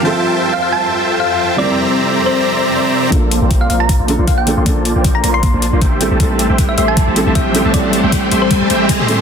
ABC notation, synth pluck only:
X:1
M:4/4
L:1/16
Q:"Swing 16ths" 1/4=156
K:Bblyd
V:1 name="Synth pluck"
z4 z f f a z4 f z3 | d z6 c4 z4 z | z4 z f f b z4 f g z2 | z4 z b b c'3 z6 |
z4 z e e a z4 e z3 | d z6 c4 z4 z |]